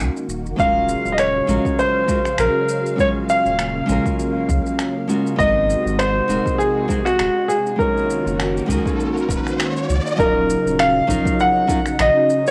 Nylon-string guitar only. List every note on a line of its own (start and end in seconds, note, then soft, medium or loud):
0.00 0.25 G#3 medium
0.00 0.25 C#4 medium
0.00 0.26 D#4 medium
0.00 0.27 F#4 medium
0.00 0.28 A#4 medium
0.56 1.44 G#3 medium
0.56 1.45 C#4 medium
0.56 1.46 F4 medium
0.61 1.47 F#4 medium
0.61 1.47 A#4 medium
1.47 2.05 G#3 medium
1.47 2.05 C#4 medium
1.47 2.06 F4 medium
1.47 2.06 F#4 medium
1.47 2.06 A#4 medium
2.08 2.19 G#3 medium
2.08 2.19 C#4 medium
2.08 2.20 F4 medium
2.08 2.20 F#4 medium
2.08 2.20 A#4 medium
2.96 3.84 G#3 medium
2.96 3.85 C#4 medium
2.96 3.86 F4 medium
3.00 3.87 F#4 medium
3.00 3.87 C#5 medium
3.86 5.04 G#3 medium
3.86 5.05 C#4 medium
3.86 5.06 F4 medium
3.90 5.06 F#4 medium
3.90 5.07 A#4 medium
5.08 5.35 G#3 medium
5.08 5.35 C#4 medium
5.08 5.36 F4 medium
5.08 5.36 F#4 medium
5.08 5.37 A#4 medium
5.36 6.24 G#3 medium
5.36 6.25 C4 medium
5.36 6.26 D#4 medium
5.41 6.27 F#4 medium
5.41 6.27 A#4 medium
6.28 6.85 G#3 medium
6.28 6.86 C4 medium
6.28 6.86 D#4 medium
6.28 6.86 F#4 medium
6.28 6.87 A#4 loud
6.88 6.99 G#3 medium
6.88 6.99 C4 medium
6.88 7.00 D#4 medium
6.88 7.00 F#4 medium
6.88 7.00 A#4 medium
7.76 8.64 G#3 medium
7.76 8.65 C#4 medium
7.76 8.66 D#4 medium
7.80 8.67 F#4 medium
7.80 8.67 C#5 medium
8.66 9.84 G#3 medium
8.66 9.85 C#4 medium
8.66 9.86 D#4 medium
8.71 9.87 F#4 medium
8.71 9.87 A#4 medium
10.16 11.04 F#3 medium
10.16 11.05 C#4 medium
10.16 11.06 D#4 medium
10.20 11.07 F4 medium
10.20 11.07 A#4 medium
11.07 11.65 F#3 medium
11.07 11.65 C#4 medium
11.07 11.66 D#4 medium
11.07 11.66 F4 medium
11.07 11.66 A#4 medium
11.67 11.79 F#3 medium
11.67 11.79 C#4 medium
11.67 11.79 D#4 medium
11.67 11.80 F4 medium
11.67 11.80 A#4 medium